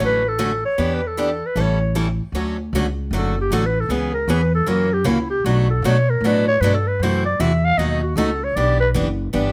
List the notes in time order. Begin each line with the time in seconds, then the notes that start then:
0.00 A1 D3 F#3 A3 C#4 F#4
0.05 B4
0.28 A4
0.39 D3 F#3 A3 C#4 F#4
0.65 C#5
0.78 E2 E3 B3 D4 G4
0.94 B4
1.07 A4
1.17 E3 B3 D4 G4
1.46 B4
1.55 A1 E3 G3 C#4 E4 A4
1.61 C#5
1.95 E3 G3 C#4 E4 A4
2.32 D2 D3 F#3 A3 C#4 F#4
2.73 C#2 D3 F#3 A3 C#4 F#4
3.11 F#1 D3 F#3 A3 C#4 F#4
3.16 A4
3.41 G4
3.50 A1 D3 F#3 A3 C#4 F#4 A4
3.66 B4
3.80 A4
3.89 C#2 C#3 E3 B3 C#4 G#4
4.14 A#4
4.28 E2 C#3 E3 B3 C#4 G#4 B4
4.55 A4
4.66 F#2 C#3 E3 A#3 C#4 F#4 A#4
4.93 G4
5.04 C#2 C#3 E3 A#3 C#4 E4 F#4
5.30 G4
5.44 B1 B2 F#3 A3 D4 F#4
5.70 A4
5.82 B2 F#3 A3 D4 F#4 C#5
6.10 A#4
6.21 A2 B2 A3
6.25 F#3 D4 F#4 B4
6.48 C#5
6.61 G2 B2 F#3 A3 D4 F#4 B4
6.74 A4
6.87 B4
6.99 F#2 C3 E3 A3 F#4 C5
7.04 E4
7.25 D5
7.40 E2 C3 E3 A3 E4 F#4 E5
7.65 F5
7.78 D#2 B2 F#3 A3 D#4 F#4 D#5
8.02 F#4
8.15 C#2 B2 F#3 A3 D#4 F#4 A4
8.44 C#5
8.56 B1 E3 B3 D4 G4 D5
8.80 B4
8.94 F#1 E3 B3 D4 G4
9.33 G1 E3 B3 D4 G4